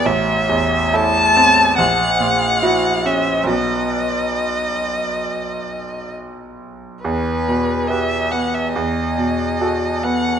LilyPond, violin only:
\new Staff \with { instrumentName = "Violin" } { \time 4/4 \key b \phrygian \tempo 4 = 70 e''4 a''4 fis''4. e''8 | dis''2. r4 | b'4 e''8 fis''16 e''16 dis''4. fis''8 | }